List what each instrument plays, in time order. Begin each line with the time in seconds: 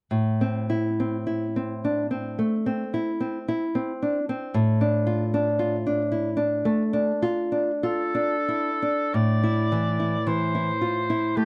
0.11 nylon-string guitar A2
0.41 nylon-string guitar C4
0.70 nylon-string guitar E4
1.00 nylon-string guitar C4
1.27 nylon-string guitar E4
1.56 nylon-string guitar C4
1.85 nylon-string guitar D4
2.11 nylon-string guitar C4
2.39 nylon-string guitar A3
2.66 nylon-string guitar C4
2.94 nylon-string guitar E4
3.20 nylon-string guitar C4
3.48 nylon-string guitar E4
3.75 nylon-string guitar C4
4.02 nylon-string guitar D4
4.29 nylon-string guitar C4
4.54 nylon-string guitar A2
4.81 nylon-string guitar D4
5.07 nylon-string guitar F4
5.34 nylon-string guitar D4
5.59 nylon-string guitar F4
5.87 nylon-string guitar D4
6.12 nylon-string guitar E4
6.37 nylon-string guitar D4
6.65 nylon-string guitar A3
6.93 nylon-string guitar D4
7.22 nylon-string guitar F4
7.52 nylon-string guitar D4
7.83 nylon-string guitar F4, oboe A4
8.15 nylon-string guitar D4
8.48 nylon-string guitar E4
8.82 nylon-string guitar D4
9.14 nylon-string guitar A2, oboe D5
9.43 nylon-string guitar E4
9.72 nylon-string guitar E3
10.00 nylon-string guitar E4
10.27 nylon-string guitar E3, oboe C5
10.55 nylon-string guitar E4
10.81 nylon-string guitar F4
11.10 nylon-string guitar E4
11.37 nylon-string guitar A3, oboe G4